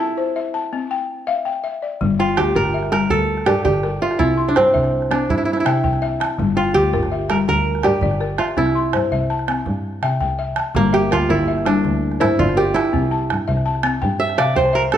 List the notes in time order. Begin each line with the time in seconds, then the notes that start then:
Already playing: C4 E4 G4
0.00 A5
0.17 C5
0.36 E5
0.54 A5
0.73 C4
0.91 G5
1.27 E5 F5
1.45 G5
1.64 E5
1.82 D5
2.01 G1 G3, calabash thump
2.19 F4 G5
2.37 D2 G4, calabash click
2.55 G1 A#4, calabash thump
2.65 calabash click
2.74 E5
2.83 calabash click
2.92 G3 A#4, calabash click
3.10 D2 A4, calabash thump
3.37 calabash click
3.46 G2 G4 A#4 D5, calabash click
3.65 G1 G4 D5, calabash thump
3.74 calabash click
3.83 A#4, calabash click
4.02 F4 E5
4.11 calabash click
4.19 C2 C4 E4, calabash thump
4.37 C6
4.49 D4
4.56 G2 C4 C5, calabash click
4.74 C2 E5, calabash thump
4.84 calabash click
5.02 calabash click
5.11 C4 D4, calabash click
5.29 G2 E4, calabash thump
5.38 E4
5.45 E4
5.53 E4, calabash click
5.60 E4
5.65 C3 E4 E5 G5, calabash click
5.84 C2 G5, calabash thump
5.93 calabash click
6.02 E5, calabash click
6.20 A5, calabash click
6.30 calabash click
6.39 G1 G3, calabash thump
6.57 F4 G5
6.74 D2 G4
6.93 G1 A#4, calabash thump
7.03 calabash click
7.12 E5
7.30 G3 A#4, calabash click
7.48 D2 A#4, calabash thump
7.75 calabash click
7.83 G2 G4 A#4 D5, calabash click
8.01 G1 D5, calabash thump
8.11 calabash click
8.21 A#4, calabash click
8.38 F4 E5, calabash click
8.48 calabash click
8.57 C2 C4 E4, calabash thump, calabash click
8.66 calabash click
8.75 C6
8.93 G2 C5, calabash click
9.12 C2 E5, calabash thump
9.30 A5, calabash click
9.39 calabash click
9.48 C4, calabash click
9.57 calabash click
9.66 G2, calabash thump
10.02 C3 E5 G5, calabash click
10.12 calabash click
10.20 C2 G5, calabash thump
10.39 E5
10.56 A5, calabash click
10.75 G1 G3 A#3, calabash thump
10.93 G4 E5
11.11 D2 F4 A#4, calabash click
11.29 G1 E4 A#4, calabash thump
11.40 calabash click
11.48 E5
11.58 calabash click
11.65 G3 D4, calabash click
11.85 D2, calabash thump
12.12 calabash click
12.20 G2 E4 A#4 C5, calabash click
12.39 G1 F4 D5, calabash thump
12.49 calabash click
12.57 G4 A#4
12.74 E4, calabash click
12.85 calabash click
12.93 C2 C4, calabash thump
13.11 A5
13.30 G2, calabash click
13.48 C2 E5, calabash thump
13.57 calabash click
13.66 A5
13.75 calabash click
13.83 C4, calabash click
14.02 G2 G5, calabash thump
14.20 E5
14.29 calabash click
14.38 C3 D5 E5 F5, calabash click
14.55 C2 C5 G5, calabash thump
14.65 calabash click
14.73 A#4 E5, calabash click
14.92 A4, calabash click